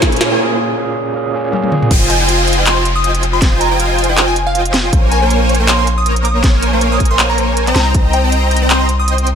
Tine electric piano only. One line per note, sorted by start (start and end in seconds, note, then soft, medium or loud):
0.00 0.38 A#2 medium
0.00 0.39 A#3 medium
0.00 0.41 C#4 medium
0.00 0.42 G#4 medium
0.38 0.74 A#2 medium
0.38 0.76 A#3 medium
0.38 0.77 C#4 medium
0.42 0.77 G#4 medium
0.75 1.12 A#2 medium
0.75 1.13 A#3 medium
0.75 1.14 C#4 medium
0.75 1.15 G#4 medium
1.13 1.31 A#2 medium
1.13 1.32 A#3 medium
1.13 1.33 C#4 medium
1.17 1.34 G#4 medium
1.32 1.50 A#2 medium
1.32 1.51 A#3 medium
1.32 1.52 C#4 medium
1.36 1.53 G#4 medium
1.51 1.69 A#2 medium
1.51 1.70 A#3 medium
1.51 1.71 C#4 medium
1.55 1.72 G#4 loud
1.70 1.88 A#2 medium
1.70 1.89 A#3 medium
1.70 1.90 C4 medium
1.74 1.90 G#4 loud